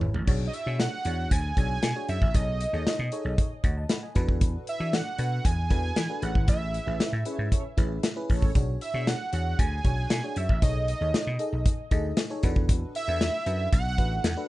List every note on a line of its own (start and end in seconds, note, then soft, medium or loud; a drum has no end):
0.00 0.12 G#1 medium
0.00 0.11 E4 medium
0.00 0.11 G#4 medium
0.00 0.11 B4 medium
0.00 0.11 C#5 medium
0.00 floor tom medium
0.14 0.25 A1 medium
0.14 floor tom medium
0.27 0.47 B1 loud
0.27 0.50 D4 medium
0.27 0.50 F#4 medium
0.27 0.50 G#4 medium
0.27 0.50 C#5 loud
0.27 kick loud
0.27 crash medium
0.47 0.55 D#5 medium
0.53 0.79 E5 medium
0.53 closed hi-hat medium
0.66 0.86 B2 medium
0.66 0.89 D4 medium
0.66 0.89 F#4 medium
0.66 0.89 G#4 medium
0.66 0.89 C#5 medium
0.80 1.33 F#5 loud
0.80 snare loud
0.80 closed hi-hat medium
1.05 1.25 E2 medium
1.05 1.35 D4 medium
1.05 1.35 F#4 medium
1.05 1.35 G#4 medium
1.05 1.35 C#5 medium
1.05 closed hi-hat medium
1.31 1.51 D2 medium
1.31 2.08 G#5 loud
1.31 kick loud
1.31 closed hi-hat loud
1.57 1.77 B1 medium
1.57 1.79 D4 medium
1.57 1.80 F#4 medium
1.57 1.80 G#4 medium
1.57 1.80 C#5 medium
1.57 kick loud
1.57 closed hi-hat medium
1.83 1.93 B2 loud
1.83 snare loud
1.83 closed hi-hat loud
1.96 2.18 D4 medium
1.96 2.18 F#4 medium
1.96 2.18 G#4 medium
1.96 2.19 C#5 medium
2.09 2.19 F#2 medium
2.09 2.37 E5 medium
2.09 closed hi-hat medium
2.22 2.31 A1 medium
2.22 kick loud
2.34 2.64 B1 loud
2.34 2.57 D#4 medium
2.34 2.57 G#4 medium
2.34 2.57 A4 medium
2.34 2.57 C#5 medium
2.34 3.38 D#5 loud
2.34 kick loud
2.34 closed hi-hat loud
2.60 closed hi-hat medium
2.73 2.83 D#2 medium
2.73 2.96 D#4 medium
2.73 2.96 G#4 medium
2.73 2.96 A4 medium
2.73 2.96 C#5 medium
2.86 muted slap bass stroke soft
2.86 snare loud
2.86 closed hi-hat medium
2.99 3.09 B2 loud
3.12 3.42 D#4 medium
3.12 3.42 G#4 medium
3.12 3.42 A4 medium
3.12 3.42 C#5 loud
3.12 closed hi-hat medium
3.25 3.35 B1 medium
3.38 kick loud
3.38 closed hi-hat medium
3.64 3.83 D2 medium
3.64 3.77 C#5 medium
3.64 3.76 F#5 medium
3.64 kick loud
3.64 closed hi-hat medium
3.77 3.90 D#5 medium
3.77 3.89 A5 medium
3.89 4.02 F#5 medium
3.89 4.02 B5 medium
3.89 snare loud
3.89 closed hi-hat loud
4.03 4.28 D#5 medium
4.03 4.27 G#5 medium
4.15 4.55 E2 loud
4.15 4.67 D4 loud
4.15 4.67 F#4 medium
4.15 4.67 A4 medium
4.15 4.67 B4 loud
4.15 kick medium
4.15 closed hi-hat medium
4.28 kick loud
4.41 kick loud
4.41 closed hi-hat loud
4.67 4.96 E5 loud
4.67 closed hi-hat medium
4.80 5.00 E3 medium
4.80 5.02 D4 medium
4.80 5.02 F#4 medium
4.80 5.03 A4 medium
4.80 5.03 D5 medium
4.93 5.47 F#5 loud
4.93 snare loud
4.93 closed hi-hat medium
5.18 5.38 B2 medium
5.18 5.49 D4 medium
5.18 5.49 F#4 medium
5.18 5.49 A4 medium
5.18 5.49 B4 medium
5.18 closed hi-hat medium
5.45 5.65 E2 loud
5.45 6.24 G#5 loud
5.45 kick loud
5.45 closed hi-hat loud
5.70 5.90 E2 medium
5.70 5.93 D4 medium
5.70 5.93 F#4 medium
5.70 5.93 A4 medium
5.70 5.93 B4 medium
5.70 kick loud
5.70 closed hi-hat medium
5.96 6.06 E3 loud
5.96 snare loud
5.96 closed hi-hat loud
6.09 6.22 D4 medium
6.09 6.22 F#4 medium
6.09 6.22 A4 medium
6.09 6.21 B4 medium
6.22 6.32 A1 loud
6.22 6.74 C#4 medium
6.22 6.74 E4 medium
6.22 6.74 G#4 medium
6.22 6.74 B4 medium
6.22 6.49 F#5 loud
6.22 closed hi-hat medium
6.35 6.45 G#1 medium
6.35 kick loud
6.48 6.78 A1 loud
6.48 7.48 E5 loud
6.48 kick loud
6.48 closed hi-hat loud
6.74 closed hi-hat medium
6.86 6.97 A1 medium
6.86 7.09 C#4 medium
6.86 7.09 E4 medium
6.86 7.09 G#4 medium
6.86 7.10 B4 medium
7.00 muted slap bass stroke soft
7.00 snare loud
7.00 closed hi-hat medium
7.13 7.23 A2 medium
7.25 7.56 C#4 medium
7.25 7.37 C#4 medium
7.25 7.56 E4 medium
7.25 7.56 G#4 medium
7.25 7.37 A4 medium
7.25 7.56 B4 loud
7.25 7.37 C#5 medium
7.25 closed hi-hat medium
7.38 7.48 G#2 loud
7.52 7.63 C#4 medium
7.52 7.63 A4 medium
7.52 7.63 C#5 medium
7.52 kick loud
7.52 closed hi-hat loud
7.77 7.97 A1 loud
7.77 8.00 C#4 medium
7.77 8.00 E4 medium
7.77 8.00 G#4 medium
7.77 8.00 B4 loud
7.77 kick loud
7.77 closed hi-hat medium
8.03 snare loud
8.03 closed hi-hat loud
8.16 8.39 C#4 medium
8.16 8.39 E4 medium
8.16 8.39 G#4 medium
8.16 8.39 B4 loud
8.29 8.49 A1 medium
8.29 8.51 C#4 medium
8.29 8.51 A4 medium
8.29 8.51 C#5 loud
8.29 kick medium
8.29 open hi-hat medium
8.42 kick loud
8.55 8.75 B1 loud
8.55 8.78 D4 medium
8.55 8.78 F#4 medium
8.55 8.78 G#4 medium
8.55 8.78 C#5 loud
8.55 kick loud
8.55 closed hi-hat loud
8.81 9.09 E5 loud
8.81 closed hi-hat medium
8.94 9.14 B2 loud
8.94 9.16 D4 medium
8.94 9.17 F#4 medium
8.94 9.17 G#4 medium
8.94 9.17 C#5 medium
9.07 9.61 F#5 loud
9.07 snare loud
9.07 closed hi-hat medium
9.32 9.53 E2 medium
9.32 9.63 D4 medium
9.32 9.63 F#4 medium
9.32 9.63 G#4 medium
9.32 9.63 C#5 medium
9.32 closed hi-hat medium
9.59 9.79 D2 loud
9.59 10.39 G#5 loud
9.59 kick loud
9.59 closed hi-hat loud
9.85 10.04 B1 medium
9.85 10.07 D4 medium
9.85 10.07 F#4 medium
9.85 10.07 G#4 medium
9.85 10.07 C#5 medium
9.85 kick loud
9.85 closed hi-hat medium
10.10 10.20 B2 loud
10.10 snare loud
10.10 closed hi-hat loud
10.23 10.46 D4 medium
10.23 10.46 F#4 medium
10.23 10.46 G#4 medium
10.23 10.46 C#5 medium
10.36 10.46 F#2 medium
10.36 10.63 E5 loud
10.36 closed hi-hat medium
10.49 10.59 A1 medium
10.49 kick loud
10.62 10.92 B1 loud
10.62 10.84 D#4 medium
10.62 10.85 G#4 medium
10.62 10.85 A4 medium
10.62 10.85 C#5 medium
10.62 11.62 D#5 loud
10.62 kick loud
10.62 closed hi-hat loud
10.88 closed hi-hat medium
11.01 11.11 D#2 medium
11.01 11.23 D#4 medium
11.01 11.24 G#4 medium
11.01 11.24 A4 medium
11.01 11.24 C#5 medium
11.14 snare loud
11.14 closed hi-hat medium
11.27 11.37 B2 medium
11.39 11.69 D#4 medium
11.39 11.70 G#4 medium
11.39 11.70 A4 medium
11.39 11.70 D#5 loud
11.39 closed hi-hat medium
11.53 11.62 B1 medium
11.66 kick loud
11.66 closed hi-hat loud
11.91 12.11 D2 medium
11.91 12.14 D#4 medium
11.91 12.14 G#4 medium
11.91 12.14 A4 medium
11.91 12.14 D#5 loud
11.91 kick loud
11.91 closed hi-hat medium
12.17 snare loud
12.17 closed hi-hat loud
12.30 12.43 D#4 medium
12.30 12.43 G#4 medium
12.30 12.42 A4 medium
12.30 12.43 C#5 loud
12.43 12.83 E2 medium
12.43 12.95 D4 loud
12.43 12.95 F#4 medium
12.43 12.95 A4 medium
12.43 12.95 B4 loud
12.43 kick medium
12.43 closed hi-hat medium
12.56 kick loud
12.69 kick loud
12.69 closed hi-hat loud
12.95 13.69 E5 loud
12.95 closed hi-hat medium
13.08 13.28 E2 medium
13.08 13.30 D4 medium
13.08 13.30 F#4 medium
13.08 13.30 A4 medium
13.08 13.31 B4 medium
13.21 snare loud
13.21 closed hi-hat medium
13.46 13.66 F#2 loud
13.46 13.76 D4 medium
13.46 13.76 F#4 medium
13.46 13.77 A4 medium
13.46 13.77 B4 medium
13.46 closed hi-hat medium
13.72 13.98 B1 medium
13.72 14.46 F#5 loud
13.72 kick loud
13.72 closed hi-hat loud
13.98 14.18 A1 loud
13.98 14.21 D4 medium
13.98 14.21 F#4 medium
13.98 14.21 A4 medium
13.98 14.21 B4 medium
13.98 kick medium
13.98 closed hi-hat medium
14.24 14.34 E2 loud
14.24 snare loud
14.24 closed hi-hat loud
14.37 14.48 D4 medium
14.37 14.48 F#4 medium
14.37 14.48 A4 medium
14.37 14.48 B4 loud